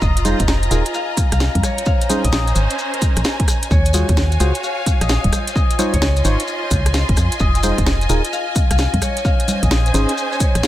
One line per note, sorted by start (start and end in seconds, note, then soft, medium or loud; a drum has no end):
0.00 0.35 F1 loud
0.00 2.49 F4 medium
0.00 0.24 C5 medium
0.00 4.37 D#5 medium
0.00 1.80 D#5 loud
0.00 3.72 A#5 medium
0.00 0.68 C6 medium
0.00 kick loud
0.00 maracas soft
0.17 closed hi-hat medium
0.17 maracas soft
0.25 0.43 D#4 medium
0.25 0.43 F4 medium
0.25 0.43 G#4 medium
0.25 1.69 C5 loud
0.25 0.43 C5 medium
0.25 open hi-hat loud
0.25 high conga medium
0.25 maracas medium
0.37 0.68 F1 loud
0.37 6.18 G#5 medium
0.37 kick loud
0.37 closed hi-hat medium
0.37 maracas soft
0.48 cross-stick medium
0.48 snare loud
0.48 maracas medium
0.63 closed hi-hat soft
0.63 maracas soft
0.71 0.83 D#1 loud
0.71 0.84 D#4 medium
0.71 0.84 F4 medium
0.71 0.84 G#4 medium
0.71 0.84 A#4 medium
0.71 open hi-hat loud
0.71 maracas medium
0.85 closed hi-hat medium
0.85 maracas soft
0.94 1.32 F5 loud
0.94 maracas medium
1.17 kick loud
1.17 open hi-hat loud
1.17 maracas medium
1.32 1.49 C2 medium
1.32 1.86 F5 loud
1.32 cross-stick medium
1.32 closed hi-hat medium
1.32 maracas soft
1.40 snare loud
1.40 maracas soft
1.55 1.62 F2 medium
1.55 kick medium
1.55 closed hi-hat medium
1.55 high conga medium
1.63 4.37 C#4 medium
1.63 2.62 C#5 medium
1.63 cross-stick medium
1.63 open hi-hat loud
1.63 maracas medium
1.77 3.71 C5 medium
1.77 closed hi-hat medium
1.77 maracas soft
1.86 3.53 F5 medium
1.86 kick loud
1.86 maracas medium
2.01 closed hi-hat medium
2.01 maracas soft
2.09 2.28 C#4 medium
2.09 2.28 D#4 medium
2.09 2.28 G#4 medium
2.09 2.28 C5 loud
2.09 open hi-hat loud
2.09 high conga medium
2.09 maracas medium
2.24 2.53 A#1 loud
2.24 4.03 D#5 loud
2.24 kick medium
2.24 closed hi-hat medium
2.24 maracas soft
2.32 cross-stick medium
2.32 snare loud
2.32 maracas medium
2.47 closed hi-hat soft
2.47 maracas soft
2.56 2.67 G#1 loud
2.56 3.77 C5 loud
2.56 open hi-hat loud
2.56 maracas medium
2.70 closed hi-hat medium
2.70 maracas soft
2.79 maracas medium
2.94 5.06 A#4 medium
2.94 closed hi-hat soft
3.02 kick loud
3.02 open hi-hat loud
3.02 maracas medium
3.16 3.23 A#1 medium
3.16 cross-stick medium
3.16 closed hi-hat medium
3.16 maracas soft
3.24 snare loud
3.24 maracas soft
3.40 kick loud
3.40 closed hi-hat medium
3.48 cross-stick medium
3.48 open hi-hat loud
3.48 maracas medium
3.62 closed hi-hat medium
3.62 maracas soft
3.71 4.04 D#2 medium
3.71 5.33 F#4 medium
3.71 4.00 C#5 loud
3.71 10.67 G#5 medium
3.71 kick loud
3.71 maracas medium
3.85 closed hi-hat medium
3.85 maracas soft
3.94 4.12 F4 medium
3.94 4.12 F#4 medium
3.94 4.12 G#4 medium
3.94 5.32 C5 loud
3.94 4.12 C#5 medium
3.94 open hi-hat loud
3.94 high conga medium
3.94 maracas medium
3.98 6.05 C#5 medium
4.05 4.37 D#2 loud
4.05 6.08 F5 medium
4.05 kick loud
4.05 closed hi-hat medium
4.05 maracas soft
4.17 cross-stick medium
4.17 snare loud
4.17 maracas medium
4.32 closed hi-hat soft
4.32 maracas soft
4.40 4.52 C#2 loud
4.40 4.53 F4 medium
4.40 4.53 F#4 medium
4.40 4.53 G#4 medium
4.40 4.53 C5 medium
4.40 open hi-hat loud
4.40 maracas medium
4.55 closed hi-hat medium
4.55 maracas soft
4.63 6.30 F5 loud
4.63 maracas medium
4.86 kick loud
4.86 open hi-hat loud
4.86 maracas medium
5.01 5.18 A#1 medium
5.01 5.55 D#5 loud
5.01 cross-stick medium
5.01 closed hi-hat medium
5.01 maracas soft
5.09 snare loud
5.09 maracas medium
5.24 5.31 D#1 medium
5.24 kick medium
5.24 closed hi-hat medium
5.24 high conga medium
5.32 9.69 F4 medium
5.32 6.00 C5 medium
5.32 cross-stick medium
5.32 open hi-hat loud
5.32 maracas loud
5.40 10.67 D#5 medium
5.47 closed hi-hat medium
5.47 maracas soft
5.56 7.34 D#5 medium
5.56 kick loud
5.56 maracas medium
5.70 closed hi-hat medium
5.70 maracas soft
5.79 5.97 D#4 medium
5.79 5.97 F4 medium
5.79 5.97 C5 medium
5.79 5.97 C#5 loud
5.79 open hi-hat loud
5.79 high conga medium
5.79 maracas loud
5.94 6.22 C#2 loud
5.94 6.24 C#5 loud
5.94 kick medium
5.94 closed hi-hat medium
5.94 maracas soft
6.02 cross-stick medium
6.02 snare loud
6.02 maracas medium
6.16 8.06 C6 medium
6.16 closed hi-hat soft
6.16 maracas soft
6.25 6.37 G#1 loud
6.25 6.43 D#4 medium
6.25 6.43 F4 medium
6.25 6.43 C5 medium
6.25 6.43 C#5 loud
6.25 6.69 C#5 loud
6.25 open hi-hat loud
6.25 maracas medium
6.40 closed hi-hat medium
6.40 maracas soft
6.48 maracas medium
6.63 7.63 C5 loud
6.71 7.04 C#2 medium
6.71 kick loud
6.71 open hi-hat loud
6.71 maracas loud
6.86 cross-stick medium
6.86 closed hi-hat medium
6.86 maracas soft
6.94 snare loud
6.94 maracas medium
7.09 7.15 G#1 medium
7.09 kick loud
7.09 closed hi-hat medium
7.17 7.29 F2 medium
7.17 cross-stick medium
7.17 open hi-hat loud
7.17 maracas medium
7.32 closed hi-hat medium
7.32 maracas soft
7.40 7.73 F1 medium
7.40 9.19 D#5 loud
7.40 kick loud
7.40 maracas medium
7.55 closed hi-hat medium
7.55 maracas soft
7.63 7.81 D#4 medium
7.63 7.82 F4 medium
7.63 7.82 G#4 medium
7.63 9.08 C5 loud
7.63 7.82 C5 medium
7.63 open hi-hat loud
7.63 high conga medium
7.63 maracas loud
7.78 8.07 F1 loud
7.78 kick loud
7.78 closed hi-hat medium
7.78 maracas soft
7.86 cross-stick medium
7.86 snare loud
7.86 maracas medium
8.01 closed hi-hat soft
8.01 maracas soft
8.06 8.21 D#1 loud
8.06 8.22 D#4 medium
8.06 8.22 F4 medium
8.06 8.22 G#4 medium
8.06 8.23 A#4 loud
8.06 10.67 G#5 medium
8.06 open hi-hat loud
8.06 maracas loud
8.25 closed hi-hat medium
8.25 maracas soft
8.32 8.70 F5 loud
8.32 maracas medium
8.55 kick loud
8.55 open hi-hat loud
8.55 maracas medium
8.71 8.87 C2 medium
8.71 9.24 F5 loud
8.71 cross-stick medium
8.71 closed hi-hat medium
8.71 maracas soft
8.78 snare loud
8.78 maracas medium
8.94 9.00 F2 medium
8.94 kick medium
8.94 closed hi-hat medium
8.94 high conga medium
9.02 10.67 C#4 medium
9.02 10.32 C#5 medium
9.02 cross-stick medium
9.02 open hi-hat loud
9.02 maracas medium
9.17 10.67 C5 medium
9.17 closed hi-hat medium
9.17 maracas soft
9.25 10.67 F5 loud
9.25 kick loud
9.25 maracas medium
9.40 closed hi-hat medium
9.40 maracas soft
9.48 open hi-hat loud
9.48 high conga medium
9.48 maracas loud
9.63 9.91 A#1 loud
9.63 9.94 D#5 loud
9.63 kick medium
9.63 closed hi-hat medium
9.63 maracas soft
9.71 cross-stick medium
9.71 snare loud
9.71 maracas medium
9.86 closed hi-hat soft
9.86 maracas soft
9.94 10.06 G#1 loud
9.94 10.12 C#4 medium
9.94 10.12 D#4 medium
9.94 10.12 G#4 medium
9.94 10.12 C5 loud
9.94 10.67 D#5 loud
9.94 open hi-hat loud
9.94 maracas loud
10.09 closed hi-hat medium
10.09 maracas soft
10.18 maracas medium
10.32 10.67 C#5 medium
10.32 maracas soft
10.40 kick loud
10.40 open hi-hat loud
10.40 maracas medium
10.55 10.62 A#1 medium
10.55 cross-stick medium
10.55 closed hi-hat medium
10.55 maracas soft
10.63 snare loud
10.63 maracas soft